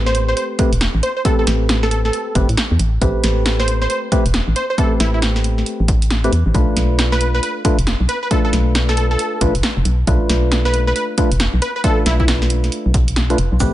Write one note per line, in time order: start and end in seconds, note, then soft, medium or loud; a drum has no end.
0.00 0.34 A1 medium
0.00 0.57 A3 medium
0.00 0.57 C4 medium
0.00 0.57 G4 medium
0.00 0.57 B4 medium
0.06 0.26 C5 medium
0.06 snare medium
0.15 closed hi-hat medium
0.28 0.34 C5 medium
0.28 snare soft
0.37 0.46 C5 medium
0.37 closed hi-hat medium
0.59 0.71 A3 loud
0.59 0.71 C4 medium
0.59 0.71 G4 medium
0.59 0.71 B4 loud
0.59 kick loud
0.59 closed hi-hat loud
0.73 0.89 E1 medium
0.73 closed hi-hat medium
0.81 snare loud
0.81 closed hi-hat medium
0.95 1.01 A1 medium
1.03 1.12 C5 medium
1.03 closed hi-hat medium
1.17 1.22 C5 medium
1.25 2.33 A3 medium
1.25 2.33 C4 medium
1.25 2.33 G4 medium
1.25 1.34 A4 medium
1.25 2.33 B4 medium
1.25 kick loud
1.25 closed hi-hat medium
1.39 1.44 A4 medium
1.47 2.11 A1 medium
1.47 snare medium
1.47 closed hi-hat loud
1.69 snare loud
1.69 closed hi-hat medium
1.83 1.88 A4 medium
1.83 snare medium
1.91 2.00 A4 medium
1.91 closed hi-hat medium
2.05 2.35 A4 medium
2.05 snare soft
2.13 closed hi-hat medium
2.35 2.46 G1 loud
2.35 2.48 A3 loud
2.35 2.48 C4 medium
2.35 2.48 G4 medium
2.35 2.48 B4 loud
2.35 kick loud
2.35 closed hi-hat loud
2.49 2.56 A2 medium
2.49 closed hi-hat medium
2.57 snare loud
2.57 closed hi-hat medium
2.71 2.78 E2 medium
2.79 2.98 A1 medium
2.79 closed hi-hat medium
3.01 3.13 A1 loud
3.01 4.10 A3 medium
3.01 4.10 C4 medium
3.01 4.10 G4 medium
3.01 4.10 B4 medium
3.01 kick loud
3.01 closed hi-hat medium
3.24 3.87 A1 medium
3.24 snare medium
3.24 closed hi-hat loud
3.46 snare loud
3.46 closed hi-hat medium
3.60 3.79 C5 medium
3.60 snare medium
3.68 closed hi-hat medium
3.82 3.87 C5 medium
3.82 snare soft
3.90 3.99 C5 medium
3.90 closed hi-hat medium
4.12 4.24 A3 loud
4.12 4.24 C4 medium
4.12 4.24 G4 medium
4.12 4.24 B4 loud
4.12 kick loud
4.12 closed hi-hat loud
4.26 4.42 E1 loud
4.26 closed hi-hat medium
4.34 snare loud
4.34 closed hi-hat medium
4.48 4.54 A1 medium
4.56 4.65 C5 medium
4.56 closed hi-hat medium
4.70 4.75 C5 medium
4.78 5.86 A3 medium
4.78 5.86 C4 medium
4.78 5.86 G4 medium
4.78 4.93 A4 medium
4.78 5.86 B4 medium
4.78 kick loud
4.78 closed hi-hat medium
5.00 5.64 A1 medium
5.00 5.09 E4 medium
5.00 snare medium
5.00 closed hi-hat loud
5.14 5.19 E4 medium
5.22 snare loud
5.22 closed hi-hat medium
5.36 snare medium
5.44 closed hi-hat medium
5.58 snare soft
5.66 closed hi-hat medium
5.80 6.30 A1 medium
5.88 kick loud
5.88 closed hi-hat medium
6.02 closed hi-hat medium
6.11 snare loud
6.11 closed hi-hat medium
6.24 6.32 A3 medium
6.24 6.32 C4 medium
6.24 6.32 G4 medium
6.24 6.32 B4 medium
6.24 closed hi-hat soft
6.32 6.43 E2 medium
6.32 closed hi-hat medium
6.46 6.53 A1 loud
6.54 6.65 B1 loud
6.54 7.63 A3 medium
6.54 7.63 D4 medium
6.54 7.63 F4 medium
6.54 7.63 B4 medium
6.54 kick loud
6.54 closed hi-hat medium
6.76 7.40 B1 medium
6.76 snare medium
6.76 closed hi-hat loud
6.99 snare loud
6.99 closed hi-hat medium
7.12 7.32 B4 loud
7.12 snare medium
7.21 closed hi-hat medium
7.34 7.40 B4 medium
7.34 snare soft
7.43 7.52 B4 medium
7.43 closed hi-hat medium
7.65 7.77 A3 loud
7.65 7.77 D4 medium
7.65 7.77 F4 medium
7.65 7.77 B4 loud
7.65 kick loud
7.65 closed hi-hat loud
7.78 7.95 F1 medium
7.78 closed hi-hat medium
7.87 snare loud
7.87 closed hi-hat medium
8.00 8.07 B1 medium
8.09 8.18 B4 medium
8.09 closed hi-hat medium
8.23 8.28 B4 medium
8.31 9.39 A3 medium
8.31 9.39 D4 medium
8.31 9.39 F4 medium
8.31 8.40 A4 medium
8.31 9.39 B4 medium
8.31 kick loud
8.31 closed hi-hat medium
8.45 8.50 A4 medium
8.53 9.17 B1 medium
8.53 snare medium
8.53 closed hi-hat loud
8.75 snare loud
8.75 closed hi-hat medium
8.89 8.94 A4 medium
8.89 snare soft
8.97 9.06 A4 medium
8.97 closed hi-hat medium
9.11 9.41 A4 loud
9.11 snare soft
9.19 closed hi-hat medium
9.41 9.52 A1 loud
9.41 9.54 A3 loud
9.41 9.54 D4 medium
9.41 9.54 F4 medium
9.41 9.54 B4 loud
9.41 kick loud
9.41 closed hi-hat loud
9.55 9.62 F1 medium
9.55 closed hi-hat medium
9.63 snare loud
9.63 closed hi-hat medium
9.77 9.84 F1 medium
9.85 10.04 B1 medium
9.85 closed hi-hat medium
10.07 10.18 B1 loud
10.07 11.16 A3 medium
10.07 11.16 D4 medium
10.07 11.16 F4 medium
10.07 11.16 B4 medium
10.07 kick loud
10.07 closed hi-hat medium
10.30 10.93 B1 medium
10.30 snare medium
10.30 closed hi-hat loud
10.52 snare loud
10.52 closed hi-hat medium
10.65 10.85 B4 loud
10.65 snare medium
10.74 closed hi-hat medium
10.87 10.93 B4 medium
10.87 snare soft
10.96 11.05 B4 medium
10.96 closed hi-hat medium
11.18 11.30 A3 loud
11.18 11.30 D4 medium
11.18 11.30 F4 medium
11.18 11.30 B4 loud
11.18 kick loud
11.18 closed hi-hat loud
11.32 11.48 F1 loud
11.32 closed hi-hat medium
11.40 snare loud
11.40 closed hi-hat medium
11.54 11.60 B1 medium
11.62 11.71 B4 medium
11.62 closed hi-hat medium
11.76 11.81 B4 medium
11.84 12.92 A3 medium
11.84 12.92 D4 medium
11.84 12.92 F4 medium
11.84 11.99 A4 medium
11.84 12.92 B4 medium
11.84 kick loud
11.84 closed hi-hat medium
12.06 12.70 B1 medium
12.06 12.15 E4 medium
12.06 snare medium
12.06 closed hi-hat loud
12.20 12.25 E4 medium
12.20 kick medium
12.28 snare loud
12.28 closed hi-hat medium
12.42 snare medium
12.50 closed hi-hat medium
12.64 snare soft
12.64 closed hi-hat soft
12.72 closed hi-hat medium
12.86 13.36 B1 medium
12.94 kick loud
12.94 closed hi-hat loud
13.08 closed hi-hat medium
13.16 snare loud
13.16 closed hi-hat medium
13.30 13.38 A3 medium
13.30 13.38 D4 medium
13.30 13.38 F4 medium
13.30 13.38 B4 medium
13.30 closed hi-hat soft
13.38 13.49 F1 medium
13.38 closed hi-hat loud
13.52 13.59 B1 loud
13.60 13.71 A1 loud
13.60 13.73 A3 medium
13.60 13.73 C4 medium
13.60 13.73 G4 medium
13.60 13.73 B4 medium
13.60 kick loud
13.60 closed hi-hat medium
13.60 shaker medium